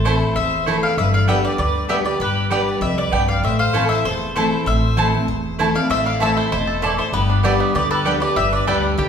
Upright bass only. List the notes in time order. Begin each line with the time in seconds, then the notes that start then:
Already playing: A1
0.36 E1
0.97 G1
1.59 D2
2.20 G1
2.81 C2
3.13 B1
3.43 A1
4.04 E1
4.66 A1
5.28 E1
5.90 A1
6.51 E1
7.13 G1
7.75 D2
8.36 G1
8.68 D2
8.98 C2